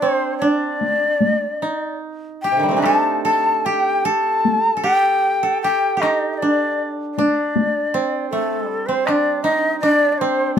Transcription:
Already playing: D4
0.00 C4 C5
0.38 D4 D5
0.81 taiko high
1.21 taiko high
1.62 D#4
2.43 G4 G5
2.52 C3
2.57 D3 D#3
2.63 G3
2.69 A3 C4
2.76 D4 D#4
2.82 G4 A4 A5, taiko rim
3.24 A4 A5
3.65 G4 G5
4.05 A4 A5
4.45 taiko high
4.77 A4
4.83 G4 G5
5.43 A4
5.63 G4 G5
5.97 G4 D#5
6.02 D#4, taiko rim
6.33 D#5
6.38 D5
6.42 D4
7.14 D5, taiko high
7.18 D4
7.56 taiko high
7.94 C4
8.30 A3 A4
8.67 G3
8.86 C4 C5
9.06 D4 D#5, taiko rim
9.11 D5
9.43 D#4 D#5
9.80 D4 D5
10.12 D5
10.18 C4 C5
10.56 D5

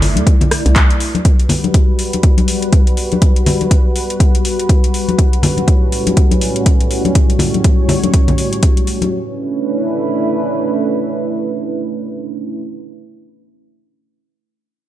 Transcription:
Already playing: G1 A3 E4 D5
0.02 open hi-hat, low conga
0.16 E2, closed hi-hat, high conga
0.27 kick, closed hi-hat
0.41 closed hi-hat, low conga
0.51 cross-stick, open hi-hat
0.66 C2, closed hi-hat
0.76 kick, clap, closed hi-hat
0.90 closed hi-hat
1.00 G3 F#4 B4, open hi-hat
1.15 closed hi-hat, high conga
1.25 kick, closed hi-hat
1.40 closed hi-hat
1.49 open hi-hat, low conga
1.64 closed hi-hat, high conga
1.74 kick, closed hi-hat
1.99 open hi-hat
2.13 closed hi-hat, high conga
2.23 kick, closed hi-hat
2.38 closed hi-hat, high conga
2.48 open hi-hat
2.62 closed hi-hat
2.73 kick, closed hi-hat
2.87 closed hi-hat
2.97 open hi-hat
3.12 closed hi-hat, high conga
3.22 kick, closed hi-hat
3.36 closed hi-hat
3.46 open hi-hat, low conga
3.61 closed hi-hat, high conga
3.71 kick, closed hi-hat
3.96 open hi-hat
4.10 closed hi-hat
4.20 kick, closed hi-hat
4.35 closed hi-hat
4.45 open hi-hat
4.59 closed hi-hat
4.69 kick, closed hi-hat
4.84 closed hi-hat
4.94 open hi-hat
5.08 closed hi-hat, high conga
5.19 A2 G3 C#4, kick, closed hi-hat
5.33 closed hi-hat
5.43 open hi-hat, low conga
5.57 closed hi-hat, high conga
5.68 kick, closed hi-hat
5.92 open hi-hat
6.07 closed hi-hat, high conga
6.17 kick, closed hi-hat
6.31 closed hi-hat, high conga
6.41 open hi-hat
6.56 closed hi-hat
6.66 kick, closed hi-hat
6.81 closed hi-hat
6.91 open hi-hat
7.05 closed hi-hat, high conga
7.15 C#5, kick, closed hi-hat
7.30 closed hi-hat
7.39 open hi-hat, low conga
7.54 closed hi-hat, high conga
7.64 kick, closed hi-hat
7.89 open hi-hat, low conga
8.04 closed hi-hat, high conga
8.14 kick, closed hi-hat
8.28 closed hi-hat, low conga
8.38 open hi-hat
8.53 closed hi-hat
8.63 kick, closed hi-hat
8.77 closed hi-hat
8.87 open hi-hat
9.02 closed hi-hat, high conga
9.12 A3 C#4 D4 E4 B4

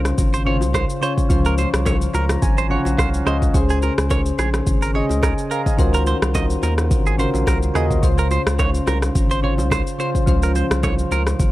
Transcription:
Already playing: C2 C#3 C#4 F4 C5
0.05 cross-stick, high bongo, shaker
0.18 G#1, kick, low conga, shaker
0.34 C5, shaker
0.45 C#3 C#4 F4 C5 C#5, low conga
0.61 C2, low bongo, shaker
0.74 C5, kick, cross-stick, high bongo, shaker
0.90 shaker
1.01 C#3 C#4 F4 C5 C#5, shaker
1.18 kick, shaker
1.29 C#2 F3 C#4 F4 C5, kick, low conga, shaker
1.45 A#4, shaker
1.58 C5, low bongo, shaker
1.74 C2, cross-stick, shaker
1.86 C#5, kick, high bongo, shaker
2.01 shaker
2.14 C#2 A#4 A#5, low bongo, shaker
2.29 cross-stick, high bongo, shaker
2.42 G#1 G#5, kick, low conga, shaker
2.58 C5, shaker
2.69 C#3 C#4 F4 C#5 F#5, low conga
2.85 A#1, low bongo, shaker
2.98 C2 C5 F5, kick, cross-stick, high bongo, shaker
3.14 shaker
3.25 C#2 C#3 C#4 F4 C5 D#5, cross-stick, shaker
3.42 kick, shaker
3.53 C#2 C#3 C#4 G#4 C5, kick, low conga, shaker
3.70 G#4, shaker
3.82 A#4, low bongo, shaker
3.98 C#2, cross-stick, shaker
4.10 C#5, kick, high bongo, shaker
4.26 shaker
4.39 A#1 G#4, cross-stick, low bongo, shaker
4.54 cross-stick, high bongo, shaker
4.67 G#1, kick, low conga, shaker
4.82 A#4, shaker
4.93 C#3 C#4 G#4 C#5 D#5, low conga
5.09 C#2, low bongo, shaker
5.23 A#4 D#5 G#5, kick, cross-stick, high bongo, shaker
5.38 shaker
5.51 A#4 F5 A#5, shaker
5.66 D#5 G#5, kick, shaker
5.77 C#2 D#3 C#4 F4 F#4 A#4 C5, kick, low conga, shaker
5.94 A#4, shaker
6.07 C5, low bongo, shaker
6.22 C2, cross-stick, shaker
6.35 D#5, kick, high bongo, shaker
6.50 shaker
6.63 D#2 A#4, low bongo, shaker
6.78 cross-stick, high bongo, shaker
6.91 G#1, kick, low conga, shaker
7.06 G#4, shaker
7.18 C#3 C#4 F4 F#4 A#4 C5, low conga, shaker
7.34 A#1, low bongo, shaker
7.47 C2 A#4, kick, cross-stick, high bongo, shaker
7.63 shaker
7.74 D#2 C#3 C#4 F4 F#4 G#4 A#4 D#5, cross-stick, shaker
7.91 kick, shaker
8.02 C#2 C#3 C#4 F4 C5, kick, low conga, shaker
8.18 A#4, shaker
8.31 C5, low bongo, shaker
8.47 C#2, cross-stick, shaker
8.59 C#5, kick, high bongo, shaker
8.74 shaker
8.87 C2 A#4, cross-stick, low bongo, shaker
9.02 cross-stick, high bongo, shaker
9.15 G#1, kick, low conga, shaker
9.31 C5, shaker
9.42 C#3 C#4 F4 C5 C#5, low conga
9.58 C2, low bongo, shaker
9.71 C5, kick, cross-stick, high bongo, shaker
9.87 shaker
9.98 C#3 C#4 F4 C5, shaker
10.15 kick, shaker
10.26 C#2 F3 C#4 F4 C5, kick, low conga, shaker
10.43 A#4, shaker
10.55 C5, low bongo, shaker
10.71 C2, cross-stick, shaker
10.83 C#5, kick, high bongo, shaker
10.99 shaker
11.11 C#2 A#4, low bongo, shaker
11.27 cross-stick, high bongo, shaker
11.40 G#1, kick, low conga, shaker

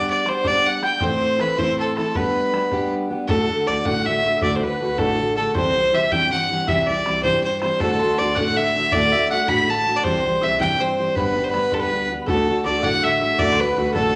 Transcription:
Already playing: G3 B3 D4 G4 D6
0.09 D5
0.25 G3 B3 D4 G4 C5 C6, bodhran
0.44 G3 B3 D4 G4 D5 D6, bodhran
0.66 F#5
0.81 G3 B3 D4 G4 G5 G6, bodhran
1.00 A2 E3 A3 C4 E4 C5 C6, bodhran
1.39 E3 A3 C4 E4 B4 B5, bodhran
1.57 A2 E3 A3 C4 E4 C5 C6, bodhran
1.79 A4
1.96 E3 A3 C4 E4 A4 A5, bodhran
2.08 C6
2.15 G3 B3 D4 G4 B4 B5, bodhran
2.53 G3 B3 D4 G4, bodhran
2.71 G3 B3 D4 G4, bodhran
3.09 G3 B3 D4 G4
3.27 D2 A2 D3 A3 D4 F#4 A4, bodhran
3.42 A4
3.48 D3 A3 D4 F#4
3.55 A4
3.67 D2 D3 A3 D4 F#4 D5
3.85 A1 D2 A2 D3 A3 D4 F#4 F#5, bodhran
3.95 bodhran
4.01 E5 F#5
4.05 D3 A3 D4 F#4 E5
4.23 D3 A3 D4 F#4 E5
4.37 D2 E5
4.41 D2 A2 D3 A3 D4 F#4 D5, bodhran
4.56 C5
4.61 D3 A3 D4 F#4 B4
4.74 B4
4.79 D2 D3 A3 D4 F#4
4.86 B4
4.97 A1 D2 A2 D3 A3 D4 F#4 A4, bodhran
5.09 bodhran
5.18 D3 A3 D4 F#4
5.36 D3 A3 D4 F#4 A4
5.54 C2 C3 E3 G3 C4 G4 C5, bodhran
5.74 E3 G3 C4 G4
5.92 C2 E3 G3 C4 G4 E5
6.11 G2 C3 E3 G3 C4 G4 G5, bodhran
6.22 bodhran
6.31 E3 G3 C4 G4 F#5
6.49 E3 G3 C4 G4
6.67 C2 C3 E3 G3 C4 G4 E5, bodhran
6.80 E5
6.86 E3 G3 C4 D5
6.91 G4
7.05 C2 E3 G3 C4 G4, bodhran
7.23 G2 C3 E3 G3 C4 G4 C5, bodhran
7.34 bodhran
7.44 E3 G3 C4 G4 C5
7.61 E3 G3 C4 G4 C5, bodhran
7.80 D2 A2 D3 A3 D4 F#4 A4 A5, bodhran
7.99 D3 A3 D4 F#4 C6
8.18 D2 D3 A3 D4 F#4 D5
8.34 A1 D2 A2 D3 A3 D4 F#4 F#5 F#6, bodhran
8.46 bodhran
8.56 D3 A3 D4 F#4 E5 E6
8.74 D3 A3 D4 F#4
8.92 D2 A2 D3 A3 D4 F#4 D5 D6, bodhran
9.12 D3 A3 D4 F#4 E5
9.30 D3 A3 D4 F#4 F#5 F#6
9.47 A1 D2 A2 D3 A3 D4 F#4 B5 B6, bodhran
9.58 bodhran
9.62 B6
9.67 D3 A3 D4 F#4 A5 A6
9.85 D3 A3 D4 F#4
9.96 D5
10.04 C2 C3 E3 G3 C4 G4 C5 C6, bodhran
10.23 E3 G3
10.41 C2 E3 G3 C4 G4 E5 E6
10.59 G2 C3 E3 G3 C4 G4 G5 G6, bodhran
10.71 bodhran
10.79 E3 G3 C4 G4 C5 C6
10.98 E3 G3 C4 G4
11.15 G1 G3 B3 D4 G4 B4 B5, bodhran
11.35 G3 B3 D4 G4
11.44 C5 B5
11.48 B4
11.53 G1 G3 B3 D4 G4, bodhran
11.71 D2 G3 B3 D4 G4 A4 C6, bodhran
11.78 B4 B5
11.82 bodhran
11.89 G3 B3 B4
11.93 D4 G4 B4
12.10 G3 B3 D4 G4
12.21 B5
12.26 D2 A2 D3 A3 D4 F#4 A4 A5, bodhran
12.47 D3 A3 D4 F#4
12.64 D2 D3 A3 D4 F#4 D5 D6
12.82 A1 D2 A2 D3 A3 D4 F#4 F#5 F#6, bodhran
12.93 bodhran
13.02 D3 A3 D4 F#4 E5 E6
13.19 D3 A3 D4 F#4 E5
13.38 D2 A2 D3 A3 D4 F#4 D5 D6, bodhran
13.52 C6
13.58 D3 A3 D4 F#4 B4 B5
13.76 D2 D3 A3 D4 F#4 B4
13.93 A1 D2 A2 D3 A3 D4 F#4 A4 A5, bodhran
14.05 bodhran

